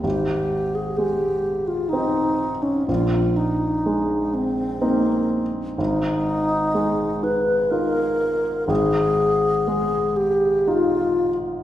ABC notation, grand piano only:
X:1
M:3/4
L:1/8
Q:1/4=62
K:Ablyd
V:1 name="Grand piano"
A,,,2 A,2 [CE]2 | B,,,2 A,2 [CE]2 | A,,,2 A,2 [EF]2 | A,,,2 A,2 [EF]2 |]